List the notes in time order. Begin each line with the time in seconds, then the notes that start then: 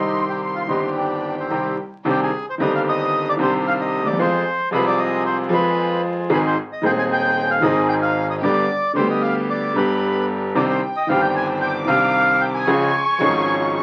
Already playing: C2 C3 D#3 G3 C4 D#4 G4 C6
0.29 G4
0.42 C6
0.55 F4
0.66 G1 G2 D#3 G3 C4 D#4 G4
0.71 G4
0.97 D4 G5
1.39 C4
1.50 C2 C3 D#3 G3 C4 D#4 G4
2.05 C2 C3 D#3 C4 D4 D#4 G4 C5
2.10 G4
2.23 G#4
2.50 C5
2.58 G1 G2 D3 D#3 C4 G4 C5
2.62 D#5
2.75 F5
2.89 D#5
3.29 D5
3.37 C2 C3 D#3 C4 D4 G4 C5
3.42 C5
3.67 F5
3.81 D#5
4.00 D2
4.06 D#2 D5
4.13 E2
4.19 F2 F3 G#3 C4 F4 G#4 C5
4.71 C2 C3 F3 G#3 C4 F4 G#4 B4
4.75 G#4
4.87 D5
4.99 D#5
5.26 C5
5.49 F2 F3 G#3 C4 F4 G#4
5.53 B4
6.29 G#1 G#2 D#3 G#3 C4 D#4 G#4 B4
6.47 C5
6.73 D#5
6.82 D#1 D#2 D#3 G#3 C4 D#4 G#4
6.86 G#4 G5
6.99 G#5
7.13 G5
7.51 F5
7.60 G#1 G#2 D#3 G#3 C4 D#4 G#4 D#5
7.64 G#4
7.89 G5
8.02 F5
8.30 D#5
8.42 G1 G2 D3 G3 B3 D4 G4 D5
8.93 D2 D3 G3 B3 D4 G4 C5
8.98 G4
9.10 D#5
9.22 F5
9.50 D5
9.74 G1 G2 D3 G3 B3 D4 G4 B4
10.55 C2 C3 D#3 C4 D4 D#4 G4 C5 D5 G5
10.69 C5
10.97 D#5
11.07 G1 G2 D#3 C4 D4 C5 F5
11.11 G4
11.21 G5
11.36 G#5
11.61 G5 D6
11.85 C2 C3 D#3 C4 D4 G4 C5 F5
12.41 G5
12.55 G#5
12.60 D#6
12.67 C#2 C#3 F3 G#3 C#4 F4 G#4 C#6
13.18 G#1 G#2 F3 G#3 C#4 F4 G#4
13.23 G#4
13.74 C#6